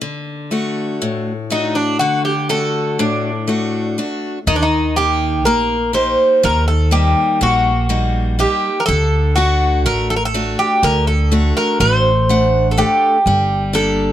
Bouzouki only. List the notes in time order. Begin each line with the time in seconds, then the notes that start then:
1.52 D#4
1.75 D4
1.99 F#4
2.25 G4
2.50 A4
3.00 D4
4.47 D#4
4.56 D4
4.62 D#4
4.96 G4
5.45 A#4
5.94 C5
6.45 A#4
6.68 A4
6.92 G4
7.43 F#4
8.40 G4
8.80 A#4
8.86 A4
9.36 F#4
9.86 A#4
10.10 A4
10.16 A#4
10.25 A4
10.59 G4
10.84 A#4
11.07 A4
11.57 A#4
11.80 C5
12.71 A4
12.78 G4
13.75 A4